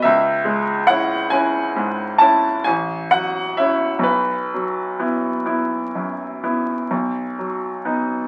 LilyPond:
<<
  \new Staff \with { instrumentName = "Grand piano" } { \time 9/8 \key b \mixolydian \tempo 4. = 43 e''4 fis''8 gis''4 a''8 gis''8 fis''8 e''8 | b'1 r8 | }
  \new Staff \with { instrumentName = "Grand piano" } { \time 9/8 \key b \mixolydian cis,8 gis8 <cis' e'>8 <cis' e'>8 gis,8 <cis' e'>8 a,,8 fis8 <cis' e'>8 | b,,8 fis8 <b e'>8 <b e'>8 fis,8 <b e'>8 b,,8 fis8 <b dis'>8 | }
>>